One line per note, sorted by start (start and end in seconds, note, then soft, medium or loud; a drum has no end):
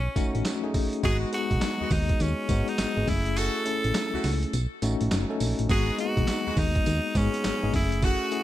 0.00 0.71 C#4 medium
0.16 0.24 A1 medium
0.16 0.44 A3 loud
0.16 0.44 C#4 loud
0.16 0.45 D#4 loud
0.16 0.45 F#4 loud
0.16 kick medium
0.16 closed hi-hat medium
0.16 tambourine medium
0.35 0.43 A1 medium
0.35 closed hi-hat soft
0.45 snare loud
0.45 clap medium
0.45 closed hi-hat medium
0.45 tambourine loud
0.63 0.91 A3 medium
0.63 0.91 C#4 medium
0.63 0.91 D#4 medium
0.63 0.92 G#4 loud
0.74 kick medium
0.74 open hi-hat medium
0.74 tambourine medium
0.93 closed hi-hat medium
1.03 1.25 G#1 loud
1.03 1.25 G#3 medium
1.03 1.31 G#3 loud
1.03 1.25 B3 medium
1.03 1.31 B3 medium
1.03 1.25 D#4 medium
1.03 1.31 D#4 medium
1.03 1.31 F#4 loud
1.03 1.25 F#4 medium
1.03 1.18 G#4 loud
1.03 kick loud
1.03 closed hi-hat medium
1.03 tambourine medium
1.32 2.10 G#3 medium
1.32 2.11 B3 medium
1.32 2.11 D#4 medium
1.32 1.94 F#4 loud
1.32 2.11 G#4 loud
1.32 closed hi-hat medium
1.51 1.59 B1 medium
1.51 kick loud
1.51 closed hi-hat medium
1.61 snare loud
1.61 clap medium
1.61 closed hi-hat medium
1.61 tambourine medium
1.80 1.85 D#2 soft
1.80 1.95 G#3 medium
1.80 1.95 B3 medium
1.80 1.95 D#4 medium
1.80 1.95 F#4 medium
1.91 2.12 D#2 medium
1.91 2.23 D#4 medium
1.91 kick loud
1.91 open hi-hat medium
1.91 tambourine medium
2.09 kick medium
2.09 closed hi-hat medium
2.20 2.34 D#2 loud
2.20 2.70 C#4 medium
2.20 closed hi-hat medium
2.20 tambourine medium
2.49 2.63 G#2 loud
2.49 2.77 G#3 medium
2.49 2.77 B3 medium
2.49 2.78 D#4 medium
2.49 2.78 F#4 loud
2.49 kick medium
2.49 closed hi-hat medium
2.49 tambourine medium
2.68 3.10 D#4 loud
2.68 closed hi-hat medium
2.78 2.86 G#1 medium
2.78 snare loud
2.78 clap loud
2.78 closed hi-hat medium
2.78 tambourine loud
2.96 3.05 G#1 medium
2.96 3.07 G#3 medium
2.96 3.07 B3 medium
2.96 3.08 D#4 medium
2.96 3.07 G#4 medium
3.07 3.50 F#1 loud
3.07 3.57 A3 medium
3.07 3.57 C#4 medium
3.07 3.57 E4 medium
3.07 3.39 E4 loud
3.07 3.58 G#4 medium
3.07 kick medium
3.07 open hi-hat medium
3.07 tambourine medium
3.26 closed hi-hat medium
3.36 3.64 A3 loud
3.36 3.64 C#4 medium
3.36 3.64 E4 medium
3.36 3.64 F#4 loud
3.36 4.54 A4 loud
3.36 closed hi-hat medium
3.36 tambourine medium
3.65 4.43 A3 medium
3.65 4.44 C#4 medium
3.65 4.44 E4 medium
3.65 4.44 A4 medium
3.65 closed hi-hat medium
3.84 3.92 A1 medium
3.84 closed hi-hat medium
3.95 snare loud
3.95 clap medium
3.95 closed hi-hat medium
3.95 tambourine medium
4.13 4.18 C#2 medium
4.13 4.28 A3 medium
4.13 4.28 C#4 medium
4.13 4.28 E4 medium
4.13 4.28 F#4 loud
4.24 4.45 C#2 medium
4.24 snare medium
4.24 open hi-hat medium
4.24 tambourine medium
4.43 closed hi-hat medium
4.53 4.67 B1 loud
4.53 closed hi-hat medium
4.53 tambourine medium
4.82 4.96 A1 medium
4.82 5.10 A3 loud
4.82 5.11 C#4 loud
4.82 5.11 D#4 loud
4.82 5.11 F#4 loud
4.82 closed hi-hat medium
4.82 tambourine medium
5.01 5.09 A1 loud
5.01 closed hi-hat soft
5.11 5.25 F#1 loud
5.11 snare loud
5.11 clap medium
5.11 closed hi-hat medium
5.11 tambourine loud
5.30 5.57 A3 medium
5.30 5.57 C#4 medium
5.30 5.58 D#4 medium
5.30 5.58 A4 loud
5.40 5.54 A#1 medium
5.40 open hi-hat medium
5.40 tambourine medium
5.59 5.67 A1 medium
5.59 closed hi-hat medium
5.69 5.91 G#1 loud
5.69 5.91 G#3 medium
5.69 5.97 G#3 medium
5.69 5.91 B3 medium
5.69 5.97 B3 medium
5.69 5.97 D#4 medium
5.69 5.91 D#4 medium
5.69 5.97 F#4 loud
5.69 5.91 F#4 medium
5.69 5.97 G#4 loud
5.69 kick loud
5.69 closed hi-hat medium
5.69 tambourine medium
5.98 6.76 G#3 medium
5.98 6.07 A#3 medium
5.98 6.77 D#4 medium
5.98 6.60 F#4 loud
5.98 6.77 G#4 medium
5.98 closed hi-hat medium
6.05 6.80 B3 medium
6.17 6.25 B1 medium
6.17 kick loud
6.17 closed hi-hat soft
6.28 snare loud
6.28 clap medium
6.28 closed hi-hat medium
6.28 tambourine medium
6.46 6.51 D#2 soft
6.46 6.61 G#3 medium
6.46 6.61 B3 medium
6.46 6.61 D#4 medium
6.46 6.61 F#4 medium
6.57 6.78 D#2 medium
6.57 7.18 D#4 loud
6.57 kick loud
6.57 open hi-hat medium
6.57 tambourine medium
6.75 kick loud
6.75 closed hi-hat medium
6.86 7.00 D#2 loud
6.86 closed hi-hat medium
6.86 tambourine medium
7.15 7.29 G#2 loud
7.15 7.43 G#3 medium
7.15 7.44 B3 medium
7.15 7.74 C#4 loud
7.15 7.44 D#4 medium
7.15 7.44 G#4 loud
7.15 kick medium
7.15 closed hi-hat medium
7.15 tambourine medium
7.34 closed hi-hat medium
7.44 7.52 G#1 medium
7.44 snare loud
7.44 clap medium
7.44 closed hi-hat medium
7.44 tambourine loud
7.62 7.71 G#1 medium
7.62 7.73 G#3 medium
7.62 7.73 B3 medium
7.62 7.74 D#4 medium
7.62 7.73 G#4 medium
7.73 8.16 F#1 loud
7.73 8.23 A3 medium
7.73 8.23 C#4 medium
7.73 8.23 E4 medium
7.73 8.06 E4 medium
7.73 8.24 G#4 medium
7.73 kick medium
7.73 open hi-hat medium
7.73 tambourine medium
7.92 closed hi-hat medium
8.02 8.30 A3 medium
8.02 8.30 C#4 medium
8.02 8.30 E4 medium
8.02 8.30 F#4 loud
8.02 8.43 F#4 loud
8.02 kick loud
8.02 closed hi-hat medium
8.02 tambourine medium
8.31 8.43 A3 loud
8.31 8.43 C#4 medium
8.31 8.43 E4 medium
8.31 8.43 G#4 loud
8.31 closed hi-hat medium